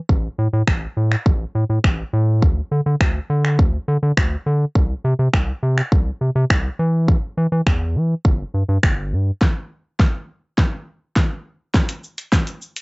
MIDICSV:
0, 0, Header, 1, 3, 480
1, 0, Start_track
1, 0, Key_signature, 0, "minor"
1, 0, Tempo, 582524
1, 77, Time_signature, 4, 2, 24, 8
1, 10561, End_track
2, 0, Start_track
2, 0, Title_t, "Analog synth bass"
2, 0, Program_c, 0, 38
2, 77, Note_on_c, 0, 33, 109
2, 233, Note_off_c, 0, 33, 0
2, 317, Note_on_c, 0, 45, 98
2, 395, Note_off_c, 0, 45, 0
2, 437, Note_on_c, 0, 45, 101
2, 515, Note_off_c, 0, 45, 0
2, 556, Note_on_c, 0, 33, 104
2, 713, Note_off_c, 0, 33, 0
2, 797, Note_on_c, 0, 45, 93
2, 953, Note_off_c, 0, 45, 0
2, 1038, Note_on_c, 0, 33, 114
2, 1194, Note_off_c, 0, 33, 0
2, 1277, Note_on_c, 0, 45, 100
2, 1355, Note_off_c, 0, 45, 0
2, 1397, Note_on_c, 0, 45, 96
2, 1475, Note_off_c, 0, 45, 0
2, 1518, Note_on_c, 0, 33, 110
2, 1674, Note_off_c, 0, 33, 0
2, 1757, Note_on_c, 0, 45, 104
2, 1997, Note_on_c, 0, 38, 96
2, 2009, Note_off_c, 0, 45, 0
2, 2153, Note_off_c, 0, 38, 0
2, 2237, Note_on_c, 0, 50, 84
2, 2315, Note_off_c, 0, 50, 0
2, 2357, Note_on_c, 0, 50, 99
2, 2435, Note_off_c, 0, 50, 0
2, 2476, Note_on_c, 0, 38, 97
2, 2633, Note_off_c, 0, 38, 0
2, 2717, Note_on_c, 0, 50, 106
2, 2958, Note_on_c, 0, 38, 115
2, 2970, Note_off_c, 0, 50, 0
2, 3114, Note_off_c, 0, 38, 0
2, 3197, Note_on_c, 0, 50, 99
2, 3275, Note_off_c, 0, 50, 0
2, 3317, Note_on_c, 0, 50, 101
2, 3395, Note_off_c, 0, 50, 0
2, 3438, Note_on_c, 0, 38, 102
2, 3594, Note_off_c, 0, 38, 0
2, 3677, Note_on_c, 0, 50, 94
2, 3833, Note_off_c, 0, 50, 0
2, 3917, Note_on_c, 0, 36, 101
2, 4073, Note_off_c, 0, 36, 0
2, 4157, Note_on_c, 0, 48, 102
2, 4235, Note_off_c, 0, 48, 0
2, 4277, Note_on_c, 0, 48, 98
2, 4355, Note_off_c, 0, 48, 0
2, 4397, Note_on_c, 0, 36, 99
2, 4553, Note_off_c, 0, 36, 0
2, 4637, Note_on_c, 0, 48, 103
2, 4793, Note_off_c, 0, 48, 0
2, 4878, Note_on_c, 0, 36, 106
2, 5034, Note_off_c, 0, 36, 0
2, 5117, Note_on_c, 0, 48, 87
2, 5195, Note_off_c, 0, 48, 0
2, 5237, Note_on_c, 0, 48, 107
2, 5315, Note_off_c, 0, 48, 0
2, 5358, Note_on_c, 0, 36, 104
2, 5514, Note_off_c, 0, 36, 0
2, 5597, Note_on_c, 0, 52, 103
2, 5909, Note_off_c, 0, 52, 0
2, 6077, Note_on_c, 0, 52, 102
2, 6155, Note_off_c, 0, 52, 0
2, 6197, Note_on_c, 0, 52, 100
2, 6275, Note_off_c, 0, 52, 0
2, 6317, Note_on_c, 0, 40, 101
2, 6556, Note_on_c, 0, 52, 94
2, 6569, Note_off_c, 0, 40, 0
2, 6713, Note_off_c, 0, 52, 0
2, 6798, Note_on_c, 0, 31, 103
2, 6954, Note_off_c, 0, 31, 0
2, 7037, Note_on_c, 0, 43, 84
2, 7115, Note_off_c, 0, 43, 0
2, 7157, Note_on_c, 0, 43, 101
2, 7235, Note_off_c, 0, 43, 0
2, 7278, Note_on_c, 0, 31, 97
2, 7517, Note_on_c, 0, 43, 86
2, 7529, Note_off_c, 0, 31, 0
2, 7673, Note_off_c, 0, 43, 0
2, 10561, End_track
3, 0, Start_track
3, 0, Title_t, "Drums"
3, 77, Note_on_c, 9, 36, 99
3, 160, Note_off_c, 9, 36, 0
3, 556, Note_on_c, 9, 36, 115
3, 557, Note_on_c, 9, 26, 107
3, 639, Note_off_c, 9, 36, 0
3, 640, Note_off_c, 9, 26, 0
3, 920, Note_on_c, 9, 26, 61
3, 1002, Note_off_c, 9, 26, 0
3, 1038, Note_on_c, 9, 36, 117
3, 1120, Note_off_c, 9, 36, 0
3, 1518, Note_on_c, 9, 36, 106
3, 1519, Note_on_c, 9, 26, 95
3, 1600, Note_off_c, 9, 36, 0
3, 1602, Note_off_c, 9, 26, 0
3, 1997, Note_on_c, 9, 36, 98
3, 2080, Note_off_c, 9, 36, 0
3, 2476, Note_on_c, 9, 36, 116
3, 2477, Note_on_c, 9, 26, 104
3, 2559, Note_off_c, 9, 26, 0
3, 2559, Note_off_c, 9, 36, 0
3, 2840, Note_on_c, 9, 26, 59
3, 2922, Note_off_c, 9, 26, 0
3, 2958, Note_on_c, 9, 36, 115
3, 3040, Note_off_c, 9, 36, 0
3, 3438, Note_on_c, 9, 36, 110
3, 3439, Note_on_c, 9, 26, 99
3, 3520, Note_off_c, 9, 36, 0
3, 3522, Note_off_c, 9, 26, 0
3, 3917, Note_on_c, 9, 36, 104
3, 4000, Note_off_c, 9, 36, 0
3, 4396, Note_on_c, 9, 36, 107
3, 4397, Note_on_c, 9, 26, 102
3, 4479, Note_off_c, 9, 36, 0
3, 4480, Note_off_c, 9, 26, 0
3, 4760, Note_on_c, 9, 26, 64
3, 4842, Note_off_c, 9, 26, 0
3, 4878, Note_on_c, 9, 36, 120
3, 4960, Note_off_c, 9, 36, 0
3, 5358, Note_on_c, 9, 36, 110
3, 5360, Note_on_c, 9, 26, 102
3, 5440, Note_off_c, 9, 36, 0
3, 5442, Note_off_c, 9, 26, 0
3, 5837, Note_on_c, 9, 36, 104
3, 5920, Note_off_c, 9, 36, 0
3, 6316, Note_on_c, 9, 36, 118
3, 6318, Note_on_c, 9, 26, 105
3, 6399, Note_off_c, 9, 36, 0
3, 6400, Note_off_c, 9, 26, 0
3, 6798, Note_on_c, 9, 36, 112
3, 6880, Note_off_c, 9, 36, 0
3, 7278, Note_on_c, 9, 36, 109
3, 7279, Note_on_c, 9, 26, 99
3, 7360, Note_off_c, 9, 36, 0
3, 7362, Note_off_c, 9, 26, 0
3, 7757, Note_on_c, 9, 36, 101
3, 7757, Note_on_c, 9, 38, 53
3, 7839, Note_off_c, 9, 36, 0
3, 7840, Note_off_c, 9, 38, 0
3, 8236, Note_on_c, 9, 36, 111
3, 8237, Note_on_c, 9, 38, 55
3, 8318, Note_off_c, 9, 36, 0
3, 8319, Note_off_c, 9, 38, 0
3, 8717, Note_on_c, 9, 36, 113
3, 8717, Note_on_c, 9, 38, 58
3, 8799, Note_off_c, 9, 38, 0
3, 8800, Note_off_c, 9, 36, 0
3, 9197, Note_on_c, 9, 36, 111
3, 9197, Note_on_c, 9, 38, 62
3, 9279, Note_off_c, 9, 38, 0
3, 9280, Note_off_c, 9, 36, 0
3, 9677, Note_on_c, 9, 36, 104
3, 9677, Note_on_c, 9, 38, 68
3, 9677, Note_on_c, 9, 82, 66
3, 9759, Note_off_c, 9, 36, 0
3, 9759, Note_off_c, 9, 38, 0
3, 9759, Note_off_c, 9, 82, 0
3, 9796, Note_on_c, 9, 42, 66
3, 9796, Note_on_c, 9, 82, 64
3, 9879, Note_off_c, 9, 42, 0
3, 9879, Note_off_c, 9, 82, 0
3, 9918, Note_on_c, 9, 82, 46
3, 10001, Note_off_c, 9, 82, 0
3, 10037, Note_on_c, 9, 42, 73
3, 10037, Note_on_c, 9, 82, 72
3, 10120, Note_off_c, 9, 42, 0
3, 10120, Note_off_c, 9, 82, 0
3, 10156, Note_on_c, 9, 36, 115
3, 10156, Note_on_c, 9, 38, 70
3, 10157, Note_on_c, 9, 82, 77
3, 10238, Note_off_c, 9, 36, 0
3, 10239, Note_off_c, 9, 38, 0
3, 10239, Note_off_c, 9, 82, 0
3, 10276, Note_on_c, 9, 42, 54
3, 10276, Note_on_c, 9, 82, 54
3, 10358, Note_off_c, 9, 42, 0
3, 10358, Note_off_c, 9, 82, 0
3, 10396, Note_on_c, 9, 82, 61
3, 10479, Note_off_c, 9, 82, 0
3, 10518, Note_on_c, 9, 42, 68
3, 10518, Note_on_c, 9, 82, 73
3, 10561, Note_off_c, 9, 42, 0
3, 10561, Note_off_c, 9, 82, 0
3, 10561, End_track
0, 0, End_of_file